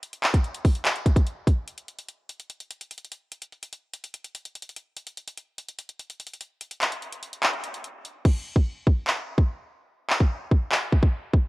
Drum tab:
CC |------------------------------------------------|------------------------------------------------|------------------------------------------------|------------------------------------------------|
HH |x--x--x--x--x--x--o--x--x--x--x--x--x-----x-----|x--x--x--x--x-----x--x--x--x--x--x--x-x-x-x-----|x--x--x--x--x-----x--x--x--x--x--x--x-x-x-x-----|x--x--x--x--x-----x--x--x--x--x--x--x-x-x-x-----|
CP |------x-----------------x-----------------------|------------------------------------------------|------------------------------------------------|------------------------------------------------|
BD |---------o--------o-----------o--o--------o-----|------------------------------------------------|------------------------------------------------|------------------------------------------------|

CC |------------------------------------------------|x-----------------------------------------------|------------------------------------------------|
HH |x--x--x--x--x--x--x--x--x--x--x--x--x-----x-----|------------------------------------------------|------------------------------------------------|
CP |------x-----------------x-----------------------|------------------------x-----------------------|------x-----------------x-----------------------|
BD |------------------------------------------------|o--------o--------o--------------o--------------|---------o--------o-----------o--o--------o-----|